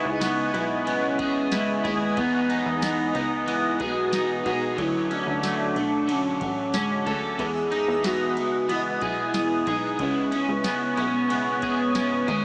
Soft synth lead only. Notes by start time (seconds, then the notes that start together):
Already playing: D#4
0.88 C#4
1.54 G#3
1.86 G#3
2.19 B3
2.84 D#4
3.50 E4
3.83 F#4
4.81 E4
5.14 D4
6.12 C#4
6.76 G#3
7.42 G#4
8.06 F#4
8.39 F#4
8.63 F#4
8.72 E4
9.69 D#4
10.02 C#4
10.34 C#4
10.58 C#4
10.66 B3
12.30 G#3